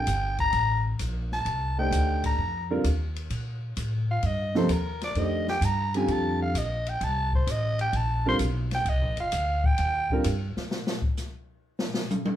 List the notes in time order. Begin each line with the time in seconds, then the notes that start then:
Already playing: G5
0.07 G1, hi-hat pedal, ride
0.38 A#5, kick, ride
0.53 A1, ride
0.99 A#1, hi-hat pedal, ride
1.32 A5, snare
1.45 C2, ride
1.78 A3 D4 D#4 G4 C5 G5
1.91 D2, hi-hat pedal, ride
2.24 A#5, kick, ride
2.38 F2
2.71 D3 G3 C4 F4 A#4
2.84 D#2, hi-hat pedal, ride
3.16 ride
3.30 A#2, ride
3.77 A2, hi-hat pedal, ride
4.11 F5
4.22 G2 D#5, ride
4.55 C3 F3 A#3 D#4 A4 C5, snare
4.69 D#2 A#4, hi-hat pedal, ride
5.01 D5, snare, ride
5.15 F2 D#3 A3 D4 G4 C5 D#5, ride
5.48 G5, snare
5.61 G2 A#5, hi-hat pedal, ride
5.94 D3 G3 C4 F4 G4 G#5, ride
6.08 F2, ride
6.12 A5
6.42 F5
6.54 A#1 D#5, hi-hat pedal, ride
6.86 G5, ride
7.01 C2 A5, ride
7.33 C5, kick
7.47 A1 D#5, hi-hat pedal, ride
7.79 G5, ride
7.93 A#1 A5, ride
8.26 D3 G3 C4 F4 A#4 C6
8.39 B1, hi-hat pedal, ride
8.71 G5, snare, ride
8.85 C2 D#5, ride
9.01 A#1
9.17 F1 F5, ride
9.32 D2, hi-hat pedal, ride
9.64 G5, kick
9.78 D#2, ride
10.10 D3 G3 C4 F4 A#4, kick
10.24 G2, hi-hat pedal, ride
10.57 muted upright bass stroke, snare
10.71 snare
10.87 snare
11.02 kick
11.17 snare, hi-hat pedal
11.79 snare
11.94 snare
12.10 hi-hat pedal, high tom
12.25 high tom